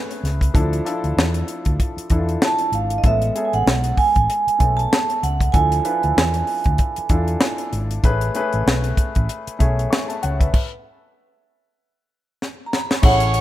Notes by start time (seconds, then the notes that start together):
Already playing: A3 C#4 G#4 B4
0.11 closed hi-hat
0.23 C#2, snare, closed hi-hat
0.41 kick, closed hi-hat
0.54 D2 F3 D4 E4 A4, kick, closed hi-hat
0.73 closed hi-hat
0.85 D4 E4 F4 A4, closed hi-hat
1.04 D2, closed hi-hat
1.17 E2, snare
1.34 closed hi-hat
1.48 closed hi-hat
1.65 D2, kick, closed hi-hat
1.80 kick, closed hi-hat
1.97 muted fingered electric bass stroke, closed hi-hat
2.10 E2 E3 D4 E4 A4, kick, closed hi-hat
2.18 F4
2.29 closed hi-hat
2.42 A5, snare
2.59 closed hi-hat
2.72 G#1 F5, closed hi-hat
2.90 closed hi-hat
2.98 D#5
3.04 A1 G#3 B3 C#4 A4 E5, kick, closed hi-hat
3.22 closed hi-hat
3.35 B3 C#4 G#4 A4, closed hi-hat
3.45 G#5
3.53 A1 F#5, closed hi-hat
3.66 B1, snare
3.84 closed hi-hat
3.97 G#5, kick, open hi-hat
4.16 A1, kick, closed hi-hat
4.30 closed hi-hat
4.47 muted fingered electric bass stroke, closed hi-hat
4.59 B1 A3 B3 C#4 A4, kick, closed hi-hat
4.77 A5, closed hi-hat
4.93 snare
5.10 closed hi-hat
5.23 C#2 F#5, closed hi-hat
5.40 kick, closed hi-hat
5.52 D2 F3 D4 E4 A4 G#5, kick, closed hi-hat
5.72 closed hi-hat
5.84 D4 E4 F4 B4, closed hi-hat
6.03 D2, closed hi-hat
6.17 E2, snare
6.34 closed hi-hat
6.47 open hi-hat
6.64 D2, kick, closed hi-hat
6.78 kick, closed hi-hat
6.96 muted fingered electric bass stroke, closed hi-hat
7.09 E2 D4 E4 F4 A4, kick, closed hi-hat
7.28 closed hi-hat
7.41 snare
7.58 closed hi-hat
7.73 G#1, closed hi-hat
7.91 closed hi-hat
8.04 A1 A3 C#4 G#4 B4, kick, closed hi-hat
8.21 closed hi-hat
8.35 A3 C#4 G#4 B4, closed hi-hat
8.53 A1, closed hi-hat
8.66 B1, snare
8.84 closed hi-hat
8.97 kick, closed hi-hat
9.15 A1, kick, closed hi-hat
9.29 closed hi-hat
9.47 muted fingered electric bass stroke, closed hi-hat
9.59 B1 A3 C#4 G#4 C#5, kick, closed hi-hat
9.79 closed hi-hat
9.90 G#5 C#6, snare
10.08 E5 A5, closed hi-hat
10.23 C#2 C#5 F#5, closed hi-hat
10.39 B4 E5, kick, closed hi-hat
10.54 kick, crash
12.42 snare
12.66 A#5
12.73 B5, snare
12.91 snare
13.02 A1 A3 C#4 E4 G#4 C#5 F#5 C#6, kick, crash
13.20 closed hi-hat
13.34 closed hi-hat